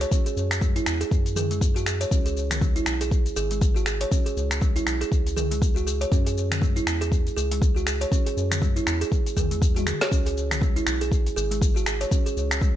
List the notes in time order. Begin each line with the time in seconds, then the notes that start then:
0.01 C#5, closed hi-hat, shaker
0.11 C#4, kick, shaker
0.26 G#4, closed hi-hat, shaker
0.37 F#2, shaker
0.51 finger snap, closed hi-hat, shaker
0.61 G#3, kick, shaker
0.76 E4, closed hi-hat, shaker
0.86 E2, finger snap, shaker
1.01 G#4, closed hi-hat, shaker
1.11 F#2, kick, shaker
1.26 closed hi-hat, shaker
1.36 G#4, mid tom, shaker
1.51 G#3, closed hi-hat, shaker
1.61 kick, shaker
1.76 F#4, closed hi-hat, shaker
1.86 G#4, finger snap, shaker
2.01 C#5, closed hi-hat, shaker
2.11 C#2 C#4, kick, shaker
2.26 G#4, closed hi-hat, shaker
2.37 shaker
2.51 finger snap, closed hi-hat, mid tom, shaker
2.61 G#3, kick, shaker
2.76 E4, closed hi-hat, shaker
2.86 B1, finger snap, shaker
3.01 G#4, closed hi-hat, shaker
3.11 kick, shaker
3.26 closed hi-hat, shaker
3.36 G#1 G#4, shaker
3.51 G#3, closed hi-hat, shaker
3.61 kick, shaker
3.76 F#4, shaker
3.86 G#4, finger snap, shaker
4.01 C#5, closed hi-hat, shaker
4.11 C#4, kick, shaker
4.26 G#4, closed hi-hat, shaker
4.37 C#2, shaker
4.51 finger snap, closed hi-hat, shaker
4.61 G#3, kick, shaker
4.76 E4, closed hi-hat, shaker
4.87 B1, finger snap, shaker
5.01 G#4, closed hi-hat, shaker
5.12 C#2, kick, shaker
5.27 closed hi-hat, shaker
5.36 G#4, mid tom, shaker
5.51 G#3, closed hi-hat, shaker
5.62 kick, shaker
5.76 F#4, shaker
5.87 G#4, shaker
6.01 C#5, closed hi-hat, shaker
6.12 F#2 C#4, kick, shaker
6.26 G#4, closed hi-hat, shaker
6.37 shaker
6.52 finger snap, closed hi-hat, mid tom, shaker
6.62 G#3, kick, shaker
6.76 E4, closed hi-hat, shaker
6.87 E2, finger snap, shaker
7.01 G#4, closed hi-hat, shaker
7.12 kick, shaker
7.27 closed hi-hat, shaker
7.37 C#2 G#4, shaker
7.51 G#3, closed hi-hat, shaker
7.62 kick, shaker
7.76 F#4, shaker
7.87 G#4, finger snap, shaker
8.01 C#5, closed hi-hat, shaker
8.12 C#4, kick, shaker
8.26 G#4, closed hi-hat, shaker
8.37 F#2, shaker
8.52 finger snap, closed hi-hat, mid tom, shaker
8.62 G#3, kick, shaker
8.76 E4, closed hi-hat, shaker
8.87 E2, finger snap, shaker
9.01 G#4, closed hi-hat, shaker
9.12 kick, shaker
9.26 closed hi-hat, shaker
9.37 E2 G#4, kick, mid tom, shaker
9.51 G#3, closed hi-hat, shaker
9.62 kick, shaker
9.76 F#4, closed hi-hat, high tom, shaker
9.87 G#4, finger snap, mid tom, shaker
10.01 C#5, snare, closed hi-hat, shaker
10.11 C#2 C#4, kick, shaker
10.26 G#4, closed hi-hat, shaker
10.37 shaker
10.51 finger snap, closed hi-hat, mid tom, shaker
10.61 G#3, kick, shaker
10.76 E4, closed hi-hat, shaker
10.87 B1, finger snap, shaker
11.01 G#4, closed hi-hat, shaker
11.12 kick, shaker
11.27 closed hi-hat, shaker
11.36 G#1 G#4, shaker
11.51 G#3, closed hi-hat, shaker
11.62 kick, shaker
11.76 F#4, shaker
11.86 G#4, finger snap, shaker
12.01 C#5, closed hi-hat, shaker
12.11 C#4, kick, shaker
12.26 G#4, closed hi-hat, shaker
12.37 C#2, shaker
12.51 finger snap, closed hi-hat, shaker
12.61 G#3, kick, shaker